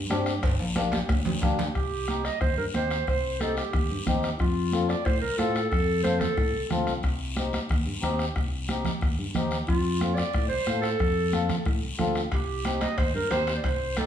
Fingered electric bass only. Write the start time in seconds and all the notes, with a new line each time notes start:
0.11 G2
0.43 G1
0.60 A#1
1.09 D2
1.43 D2
1.76 C2
2.42 D#2
2.58 G2
2.75 D#2
3.08 C2
3.74 D#2
3.91 G2
4.07 D#2
4.40 F2
5.06 A2
5.22 C2
5.39 A2
5.72 F2
6.38 A2
6.55 C2
6.71 D2
6.88 C2
7.04 C2
7.71 D#2
7.86 G2
8.03 D#2
8.36 C2
9.02 D#2
9.19 G2
9.35 D#2
9.69 F2
10.34 A2
10.51 C2
10.68 A2
11.00 F2
11.66 A2
11.83 C2
11.99 D2
12.32 C2
12.98 D#2
13.15 G2
13.31 D#2
13.65 C2